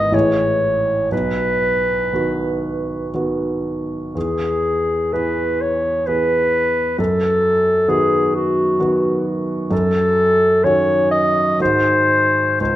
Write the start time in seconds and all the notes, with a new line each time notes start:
Already playing: G#1 E3 B3 G#4 D#5
0.12 A1 E3 E4 G#4 C#5
1.12 B1 B4
2.13 D#3 B3 F#4
3.14 D#3 B3 F#4
4.15 E2 G#4
5.13 E3 B3 G#4 B4
5.61 C#5
6.07 E3 B3 G#4 B4
6.99 F#2 A4
7.88 D#3 B3 F#4 G#4
8.35 F#4
8.80 D#3 B3 F#4
9.71 F#2 A4
10.64 D#3 C#4 F#4 C#5
11.11 D#5
11.60 G#2 D#3 G#3 F#4 C5
12.60 C#2 C5